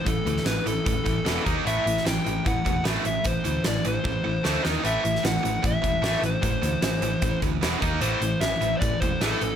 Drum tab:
HH |x-x-x-x-x-x-x-x-|x-x-x-x-x-x-x-x-|x-x-x-x---------|x-x-x-x-x-x-x-x-|
SD |---oo-------o---|---oo-------o---|----o-------o-o-|---oo-------o---|
BD |o-------o-o---o-|--------o-o-----|o-------o-------|--------o-o-----|

HH |x-x-x-x-x-x-x-x-|x-x-x-x-x-x-x-x-|
SD |----o-------o---|----o-------o---|
BD |o-------o-o---o-|--------o-o-----|